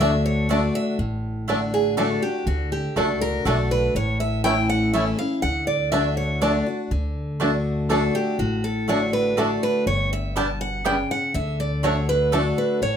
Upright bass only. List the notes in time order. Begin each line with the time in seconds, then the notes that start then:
Already playing: D2
0.99 A1
2.46 D2
2.96 C#2
3.45 B1
3.95 A1
5.43 D2
6.91 D2
8.39 A1
9.86 G1
11.34 D2
12.82 A1